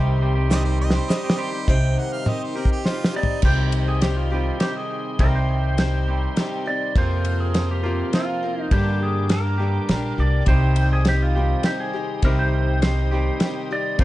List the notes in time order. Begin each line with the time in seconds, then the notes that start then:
Already playing: C2 C3 D#3 G3 C4 D#4 G4 C5 D#5 C6
0.21 D#3 G3 C4 G4
0.35 G3 C4 G4
0.50 C3 D#3 G3 C4 D#4 G4 C5 D#5, snare, shaker
0.65 G3 C4 G4 C5
0.81 D#5
0.91 G4, snare
0.95 G3 C4 C5, shaker
1.08 G3 C4 D#4 G4 C5 D#5, snare, shaker
1.24 G3 C4 G4
1.30 snare
1.37 D#3 G3 C4 G4 C5
1.53 G3 C4 G4
1.67 C2 C3 G3 C4 D#4 G4 C5 D#5 G5 C6, kick, closed hi-hat
1.97 D#3 F#5
2.13 F5
2.25 G3 C4 D#4 G4 A#4 D#5, high tom
2.43 C5
2.55 C4 D#4 G4 A#4
2.65 kick
2.72 G4
2.84 G3 C4 D#4 F4 G4 C5, snare
3.04 snare
3.13 G3 C4 D#4 G4 D5
3.23 floor tom
3.42 C2 C3 D#3 G3 C4 D#4 G4 C5 D#5 G5 C6, kick, crash
3.72 ride
3.88 G#4
4.01 G3 C4 D#4 G4, snare, ride
4.17 F4
4.30 C3 D#3 G3 C4 D#4 G4
4.60 C4 D#4 G4, snare, ride
4.77 G#4
5.19 C2 C3 D#3 G3 C4 D#4 G4 A#4, kick, ride
5.35 C5
5.77 G3 C4 D#4 G4 C5, snare, ride
6.08 C3 D#3 G3 C4 G4
6.36 G3 C4 D#4 G4, snare, ride
6.66 C4 D#4 G4 D5
6.96 F2 C3 F3 A#3 C4 F4 A#4 C5 F5, kick, ride
7.25 ride
7.40 G#4
7.54 F3 C4 F4 A#4, snare, ride
7.71 G4
7.83 F2 C3 F3 A#3 C4 F4 A#4
8.13 F3 C4 F4 A#4, snare, ride
8.43 C4 F4 A#4
8.61 D#4
8.70 G2 D3 G3 A#3 D4 G4 G5 D6, kick, ride
9.03 G#4
9.29 G3 A#3 D4 G4 A#4, snare, ride
9.58 G2 D3 G3 A#3 D4 G4
9.62 G3
9.89 A#1 G3 A#3 D4 G4, snare, ride
10.18 C2 G3 A#3 D4 G4 D5
10.46 C2 C3 D#3 G3 C4 D#4 G4 C5 D#6, kick, ride
10.76 ride
10.93 G#4
11.05 G3 C4 D#4 G4 C5, snare, ride
11.23 F4
11.35 C3 D#3 G3 C4 D#4 G4
11.63 G3 C4 D#4 G4 C5 G5, snare, ride
11.80 G#4
11.93 C4 D#4 G4
12.22 C2 C3 D#3 G3 C4 D#4 G4 A#4 C5, kick, ride
12.39 C5
12.82 G3 C4 D#4 G4 C5, snare, ride
13.11 C3 D#3 G3 C4 D#4 G4
13.40 G3 C4 D#4 G4 C5, snare, ride
13.71 C4 D#4 G4 D5
13.98 F2 C3 F3 A#3 C4 F4 A#4 C5 F5 C6, kick, ride